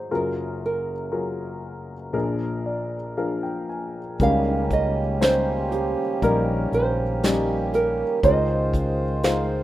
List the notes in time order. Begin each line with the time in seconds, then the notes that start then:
Already playing: F#3 D#4 G#4 C5
0.11 F#1 F#2 F#3 F4 G#4 A#4
0.66 A#4
1.12 F#3 F4 G#4 A#4
2.13 A#1 A#2 F3 D4 G#4 A#4
2.66 D5
3.17 F3 D4 G#4 A#4 F5
3.43 G5
3.69 G#5
4.20 C#2 C#3 D#3 G3 A#3 C#4 D#4 G4 A#4 F5, kick, closed hi-hat
4.49 C#4
4.71 D#5, kick, closed hi-hat
5.21 G3 C#4 D#4 C5, snare, closed hi-hat
5.71 G4, closed hi-hat
6.22 A#1 G3 C#4 D#4 A#4, kick, closed hi-hat
6.72 A#1 C5, closed hi-hat
7.23 G3 C#4 D#4 G4, snare, closed hi-hat
7.72 A#4, closed hi-hat
8.23 C#2 G#3 C#4 D#4 F4 C5 D#5, kick, closed hi-hat
8.74 kick, closed hi-hat
9.23 G#3 D#4 F4 C5 F5, snare, closed hi-hat